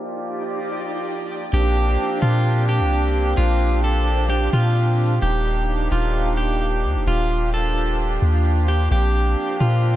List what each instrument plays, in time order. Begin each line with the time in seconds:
Already playing: accordion F3 A#3 F4 G4 D5, synth texture D#4 G4 D5 G5
1.53 808-style bass A#1, accordion F3 A#3 C4 D4 G4, synth texture D4 C5 G5, clean electric guitar G4
2.22 808-style bass A#2, clean electric guitar F4
2.69 clean electric guitar G4
2.80 808-style bass C2
3.37 808-style bass A#1, clean electric guitar F4, synth texture F5
3.84 clean electric guitar A4
4.30 clean electric guitar G4
4.53 808-style bass A#2, clean electric guitar F4
5.22 808-style bass D#1, accordion D#4, synth texture F4 D5 G5, clean electric guitar G4
5.92 808-style bass D#1, clean electric guitar F4
6.37 clean electric guitar G4
6.84 808-style bass D#2
6.95 808-style bass D#1
7.07 808-style bass D#1, accordion F4, clean electric guitar F4, synth texture C5
7.54 clean electric guitar A4
8.22 808-style bass D#2
8.68 clean electric guitar G4
8.91 808-style bass A#1, accordion F3 C4, synth texture D4 G5, clean electric guitar G4
9.60 808-style bass A#2, clean electric guitar F4